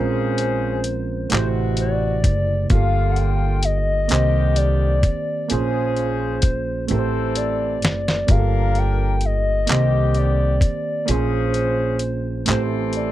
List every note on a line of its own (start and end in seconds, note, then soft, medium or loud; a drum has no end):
0.00 1.28 A#1 loud
0.00 0.83 F3 medium
0.00 1.30 G#3 medium
0.00 1.31 C4 medium
0.00 0.83 C#4 medium
0.00 1.32 C#4 medium
0.00 1.32 F4 medium
0.00 0.83 G#4 medium
0.00 1.33 A#4 medium
0.00 1.32 C5 loud
0.38 closed hi-hat medium
0.84 closed hi-hat medium
1.29 2.20 A1 loud
1.29 2.22 B2 medium
1.29 2.70 C3 medium
1.29 2.22 C3 medium
1.29 2.70 A3 medium
1.29 2.71 E4 medium
1.29 2.22 F#4 medium
1.29 2.72 G4 medium
1.29 clap loud
1.29 closed hi-hat medium
1.34 1.48 C5 medium
1.34 2.72 C5 medium
1.77 2.68 D5 loud
1.77 closed hi-hat medium
2.24 2.67 F#1 medium
2.24 kick medium
2.24 closed hi-hat medium
2.70 4.06 G1 loud
2.70 3.61 D3 medium
2.70 4.10 D3 medium
2.70 4.07 A#3 medium
2.70 3.62 A#3 medium
2.70 3.61 F4 medium
2.70 4.11 F4 medium
2.70 4.11 G4 medium
2.70 3.13 F5 loud
2.70 kick loud
2.70 closed hi-hat medium
2.75 4.12 A4 medium
3.11 3.19 F#5 medium
3.16 3.66 G5 loud
3.16 closed hi-hat medium
3.63 4.58 D#5 loud
3.63 closed hi-hat medium
4.08 5.00 C2 loud
4.08 5.01 D3 medium
4.08 5.01 D#3 medium
4.08 5.50 D#3 medium
4.08 5.47 A#3 medium
4.08 5.49 C4 medium
4.08 5.01 G4 medium
4.08 5.51 G4 medium
4.08 clap loud
4.08 closed hi-hat medium
4.13 5.51 C5 medium
4.56 5.50 D5 loud
4.56 closed hi-hat medium
5.03 kick medium
5.03 closed hi-hat medium
5.48 6.86 A#1 loud
5.48 6.41 F3 medium
5.48 6.88 A#3 medium
5.48 5.56 C4 soft
5.48 6.41 C#4 medium
5.48 6.90 F4 medium
5.48 6.41 G#4 medium
5.48 6.85 C5 loud
5.48 closed hi-hat medium
5.52 6.90 G#4 medium
5.52 6.91 C5 medium
5.56 6.92 C#4 medium
5.96 closed hi-hat soft
6.42 kick medium
6.42 closed hi-hat medium
6.87 7.84 A1 loud
6.87 7.80 E3 medium
6.87 8.28 A3 medium
6.87 8.28 C4 medium
6.87 7.80 C4 medium
6.87 8.29 E4 medium
6.87 7.80 A4 medium
6.87 7.38 C5 medium
6.87 closed hi-hat medium
6.92 8.30 G4 medium
6.92 6.97 A#4 medium
6.99 8.34 C5 medium
7.35 8.32 D5 loud
7.35 closed hi-hat medium
7.82 8.25 F#1 medium
7.82 snare loud
7.82 closed hi-hat medium
8.08 snare medium
8.27 9.64 G1 loud
8.27 9.68 D3 medium
8.27 9.20 F3 medium
8.27 9.65 A#3 medium
8.27 9.19 D4 medium
8.27 9.69 F4 medium
8.27 9.19 A#4 medium
8.27 8.80 F5 loud
8.27 kick loud
8.27 closed hi-hat medium
8.31 9.69 G4 medium
8.31 8.37 G#4 medium
8.39 9.73 A4 medium
8.75 9.27 G5 loud
8.75 closed hi-hat soft
9.21 closed hi-hat medium
9.25 10.19 D#5 loud
9.67 10.58 C2 loud
9.67 10.59 D3 medium
9.67 10.59 D#3 medium
9.67 11.08 D#3 medium
9.67 11.05 A#3 medium
9.67 11.06 C4 medium
9.67 10.59 G4 medium
9.67 11.09 G4 medium
9.67 clap loud
9.67 closed hi-hat medium
9.72 11.10 C5 medium
10.14 11.11 D5 medium
10.14 closed hi-hat medium
10.61 kick medium
10.61 closed hi-hat medium
11.06 12.44 A#1 loud
11.06 11.98 F3 medium
11.06 12.46 A#3 medium
11.06 11.14 C4 soft
11.06 11.98 C#4 medium
11.06 12.48 F4 medium
11.06 11.98 G#4 medium
11.06 12.48 G#4 medium
11.06 12.48 C5 loud
11.06 closed hi-hat medium
11.11 12.50 C#4 medium
11.11 12.49 C5 medium
11.54 closed hi-hat soft
11.99 closed hi-hat medium
12.46 13.12 A1 loud
12.46 13.12 E3 medium
12.46 13.12 A3 medium
12.46 13.12 C4 medium
12.46 13.12 E4 medium
12.46 13.12 A4 medium
12.46 12.62 C5 medium
12.46 clap loud
12.46 closed hi-hat medium
12.50 13.12 G4 medium
12.50 13.12 C5 medium
12.93 13.12 D5 medium
12.93 closed hi-hat medium